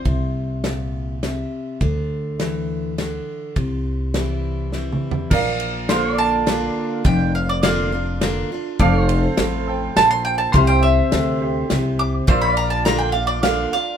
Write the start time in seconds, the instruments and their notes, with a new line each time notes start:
Already playing: mandolin C5
0.05 upright bass C2, steel-string acoustic guitar C3, kick, ride
0.64 steel-string acoustic guitar A#2, snare, ride
1.23 steel-string acoustic guitar C3, snare, ride
1.81 upright bass D2, steel-string acoustic guitar D3, kick, ride
2.40 steel-string acoustic guitar E3, snare, ride
2.98 steel-string acoustic guitar D3, snare, ride
3.56 upright bass C2, steel-string acoustic guitar C3, kick, ride
4.14 steel-string acoustic guitar E3 G3 C4 E4, snare, ride
4.72 steel-string acoustic guitar E3 G3 C4 E4, snare
4.92 mid tom
5.11 floor tom
5.30 upright bass A#1, steel-string acoustic guitar A#2, grand piano A#4 D5 F5, kick, crash
5.60 ride
5.89 steel-string acoustic guitar D3 A#3 D4 F4, pedal steel guitar C5 F5, snare, ride
6.15 pedal steel guitar D5, mandolin A5
6.47 steel-string acoustic guitar D3 A#3 D4 F4, snare, ride
7.05 upright bass F1, steel-string acoustic guitar F2, mandolin G5, kick, ride
7.35 mandolin F5
7.49 mandolin D5
7.63 steel-string acoustic guitar D3 A#3 D4 F4, mandolin D5 F5, snare, ride
7.92 steel-string acoustic guitar D4 F4
8.21 steel-string acoustic guitar D3 A#3 D4 F4, snare, ride
8.52 steel-string acoustic guitar D4 F4
8.79 upright bass F1, steel-string acoustic guitar F2, grand piano A4 C5 F5, pedal steel guitar D5 F5, kick, ride
9.05 pedal steel guitar C5, ride
9.37 upright bass A1, steel-string acoustic guitar A2, snare, ride
9.67 grand piano A4 C5 G5
9.96 upright bass A#1, steel-string acoustic guitar A#2, mandolin A5, snare, ride
10.11 mandolin C6
10.25 mandolin G5
10.38 mandolin A5
10.52 upright bass C2, steel-string acoustic guitar C3, grand piano G4 C5, pedal steel guitar C5 F5, mandolin C6, kick, ride
10.57 grand piano E5
10.67 mandolin G5
10.73 pedal steel guitar E5
10.83 mandolin E5
11.12 upright bass D2, steel-string acoustic guitar D3, snare, ride
11.41 grand piano G4 C5 E5
11.70 upright bass C2, steel-string acoustic guitar C3, snare, ride
11.99 mandolin D6
12.27 upright bass A#1, steel-string acoustic guitar A#2, grand piano F4 A#4 D5, pedal steel guitar C5 E5, mandolin C6, kick, ride
12.41 mandolin B5
12.49 pedal steel guitar F5
12.54 pedal steel guitar D5, mandolin A#5, ride
12.70 mandolin A5
12.85 steel-string acoustic guitar D3 A#3 D4 F4, mandolin A#5, snare, ride
12.99 mandolin G5
13.12 steel-string acoustic guitar F4, mandolin F5
13.17 steel-string acoustic guitar D4
13.27 mandolin D5
13.43 steel-string acoustic guitar D3 A#3 D4 F4, mandolin F5, snare, ride
13.73 steel-string acoustic guitar D4 F4, mandolin F5